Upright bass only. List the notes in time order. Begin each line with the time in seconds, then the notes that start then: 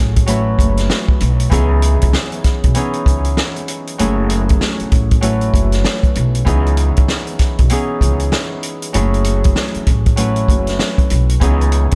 Already playing: A1
0.59 F#1
1.21 B1
1.52 C#2
2.03 C#2
2.65 B1
3.06 C#2
4.00 F#1
4.81 muted upright bass stroke
4.93 A1
5.54 F#1
6.17 B1
6.47 C#2
6.98 C#2
7.60 B1
8.01 C#2
8.95 F#1
9.76 muted upright bass stroke
9.88 A1
10.49 F#1
11.11 B1
11.42 C#2